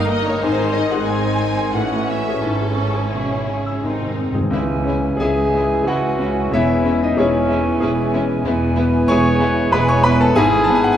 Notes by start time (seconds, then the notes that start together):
Already playing: G1 G2 D#3 G3 A#3 D#4 A#4 D#5 F5 A#5 D#6
0.11 A#4 D#5
0.26 D#4 C#5
0.41 G#1 G#2 G#3 C4 D#4 C5 G#5 C6
0.60 D#3
0.74 D#4 D#5
0.90 G#4 F#5
1.07 C4 D#4 C5 G#5
1.25 D#5
1.40 G#5
1.57 C6
1.73 A1 A2 E3 A3 C#4 E4 F#4 F#5 C#6
1.93 E3
2.09 C#4 E5
2.29 G#4
2.42 G#1 G#2 C#4 E4 A4
2.61 G#3
2.77 C#4
2.94 G#4
3.12 B2 G#4 E5
3.31 C#5
3.49 C#3 G#5
3.66 E6
3.83 G#1 G#2 C3 D#3 C4 D#4 C6
3.92 G#2
4.00 G#2 D#3
4.07 G#2
4.16 G#2 C4
4.24 G#2
4.32 G#2 G#4
4.40 G#2
4.50 C#2 C#3 E3 G#3 E4 G#5
4.55 G#3 C#4 E4
4.84 G#3 C#4
4.88 E4
5.17 C#2 G#3 E4 G#4 G#5
5.21 E3 C#4 G#4 E5 G#5
5.50 G#3 E5
5.54 C#4 E4
5.84 C#2 G#3 F#4 G#4
5.88 C#4 E4 F#4 F#5
6.19 G#3 C#4 E4
6.51 E1 E2 E3 G#3 C#4 E4 C#5 E5 G#5
6.83 G#3 C#4
6.87 E4
7.02 D#4 D#5
7.17 E1 E2 E3 G#3 C#4 E4 G#4 C#5 G#5
7.49 G#3 C#4 E4 E5
7.80 E1 E2 G#3 C#4 E4 G#4
8.13 G#3 C#4 E4
8.45 E1 E2 E3 G#3 B3 E4 G#5
8.77 G#3 B3 E4
9.08 E1 E2 G#3 B3 E4 G#4 C#5 G#5 C#6
9.40 G#3 B3 E4 B4
9.72 E1 E2 E3 G#3 B3 E4 G#4 B4 G#5 B5
9.88 C#5 C#6
10.04 G#3 B3 E4 B4 B5
10.20 A4 A5
10.35 G#1 G#2 E3 B3 G#4 E5 G#5 B5
10.64 E3 A5
10.69 B3
10.75 G#5
10.84 F#5
10.92 G#5